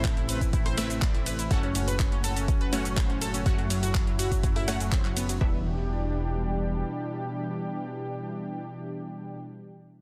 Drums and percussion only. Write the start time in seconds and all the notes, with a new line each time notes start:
0.04 kick, clap, closed hi-hat, ride, cabasa
0.17 closed hi-hat
0.29 open hi-hat, ride, cabasa
0.41 kick, closed hi-hat, cabasa
0.53 kick, closed hi-hat, ride, cabasa
0.66 cross-stick, open hi-hat
0.78 cross-stick, open hi-hat, ride, cabasa
0.90 closed hi-hat, cabasa
1.02 kick, clap, closed hi-hat, ride, cabasa
1.15 closed hi-hat
1.26 open hi-hat, ride, cabasa
1.39 closed hi-hat, cabasa
1.51 kick, closed hi-hat, ride, cabasa
1.63 closed hi-hat
1.75 open hi-hat, ride, cabasa
1.88 closed hi-hat, cabasa
1.99 kick, clap, closed hi-hat, ride, cabasa
2.12 closed hi-hat
2.24 open hi-hat, ride, cabasa
2.36 closed hi-hat, cabasa
2.48 kick, closed hi-hat, ride, cabasa
2.61 closed hi-hat
2.73 open hi-hat, ride, cabasa
2.85 closed hi-hat, cabasa
2.97 kick, cross-stick, clap, closed hi-hat, ride, cabasa
3.10 closed hi-hat
3.21 open hi-hat, ride, cabasa
3.34 closed hi-hat, cabasa
3.46 kick, closed hi-hat, ride, cabasa
3.58 closed hi-hat
3.70 open hi-hat, ride, cabasa
3.83 closed hi-hat, cabasa
3.95 kick, clap, closed hi-hat, cabasa
4.07 closed hi-hat
4.19 open hi-hat, ride, cabasa
4.32 kick, closed hi-hat, cabasa
4.43 kick, closed hi-hat, ride, cabasa
4.56 cross-stick, open hi-hat
4.68 cross-stick, open hi-hat, ride, cabasa
4.80 closed hi-hat, cabasa
4.92 kick, clap, closed hi-hat, ride, cabasa
5.05 clap, closed hi-hat
5.17 open hi-hat, ride, cabasa
5.29 closed hi-hat, cabasa
5.41 kick